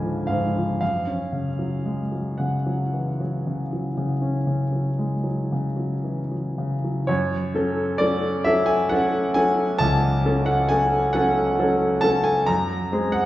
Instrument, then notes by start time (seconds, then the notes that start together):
grand piano
Already playing: C#2 G#2 D3 F3 F#3 C#4 G#5 A5
0.03 F3
0.27 G#2 F5
0.57 F3
0.81 F#2 F5
1.07 C#4
1.32 C#3
1.59 F#3
1.85 G#3
2.12 F#3
2.38 C#3 F#5
2.66 F#3
2.93 E3
3.20 F#3
3.47 C#3
3.73 F#3
3.97 C#3
4.22 C#4
4.47 C#3
4.73 F#3
4.98 G#3
5.24 F#3
5.52 C#3
5.77 F#3
6.04 E3
6.31 F#3
6.58 C#3
6.84 F#3
7.07 F#2 C#5
7.55 F#3 C#4 A4
7.98 F#3 C#4 A4 D5
8.44 F#3 C#4 A4 E5
8.66 G#5
8.89 F#3 C#4 A4 F#5
9.34 F#3 C#4 A4 G#5
9.79 C#2 A5
10.25 F#3 C#4 A4
10.46 F#5
10.69 F#3 C#4 A4 G#5
11.13 F#3 C#4 A4 F#5
11.59 F#3 C#4 A4
12.01 F#3 C#4 A4 A5
12.24 G#5
12.46 F#2 A#5
12.92 G#3 C4 G#4
13.12 F#5